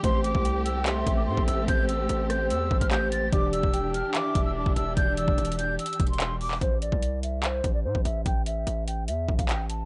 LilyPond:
<<
  \new Staff \with { instrumentName = "Flute" } { \time 4/4 \key a \minor \tempo 4 = 146 c'''8 d'''4 e'''8 c'''8. d'''16 c'''8 e'''8 | g'''8 e'''4 g'''8 e'''8. f'''16 g'''8 a'''8 | d'''8 e'''4 f'''8 d'''8. e'''16 d'''8 e'''8 | g'''8 e'''4 g'''8 e'''8. c'''8. d'''8 |
c''8 d''4 e''8 c''8. d''16 c''8 e''8 | g''8 e''4 g''8 e''8. f''16 g''8 a''8 | }
  \new Staff \with { instrumentName = "Soft synth lead" } { \time 4/4 \key a \minor c''4 g''4 e''2 | c''1 | d''4 g''4 e''2 | d''2 r2 |
r1 | r1 | }
  \new Staff \with { instrumentName = "Tine electric piano" } { \time 4/4 \key a \minor <a g' c''>1~ | <a g' c''>2. <a g' c''>4 | <e d' g'>1~ | <e d' g'>1 |
r1 | r1 | }
  \new Staff \with { instrumentName = "String section" } { \time 4/4 \key a \minor << { g'1~ | g'1~ | g'1~ | g'1 |
r1 | r1 | } \\ { <a c'>1~ | <a c'>1 | <e d'>1~ | <e d'>1 |
r1 | r1 | } >> }
  \new Staff \with { instrumentName = "808-style bass" } { \clef bass \time 4/4 \key a \minor a,,8. c,4.~ c,16 a,,8 a,16 a,,16 a,,8 | a,,4 a,,4 e,8 a,,16 a,,4~ a,,16 | e,,8. e,,4 r8. e,,8. e,,16 e,,8 | e,,8. e,,16 e,,4 r8 e,,4. |
a,,8. c,4.~ c,16 a,,8 a,16 a,,16 a,,8 | a,,4 a,,4 e,8 a,,16 a,,4~ a,,16 | }
  \new DrumStaff \with { instrumentName = "Drums" } \drummode { \time 4/4 <hh bd>8 hh16 bd16 hh8 hh8 <hc hh>8 <hh bd>8 r16 bd16 hh8 | <hh bd>8 hh8 hh8 <hh ss>8 hh8 bd16 <hh bd>16 <hc hh>8 hh8 | <hh bd>8 hh16 bd16 hh8 hh8 <hc hh>8 <hh bd>8 r16 bd16 hh8 | <hh bd>8 hh16 bd16 \tuplet 3/2 { hh16 hh16 hh16 hh16 r16 r16 hh16 hh16 hh16 <hh bd>16 hh16 hh16 } <hc hh>8 hho16 hc16 |
<hh bd>8 hh16 bd16 hh8 hh8 <hc hh>8 <hh bd>8 r16 bd16 hh8 | <hh bd>8 hh8 hh8 hh8 hh8 bd16 <hh bd>16 <hc hh>8 hh8 | }
>>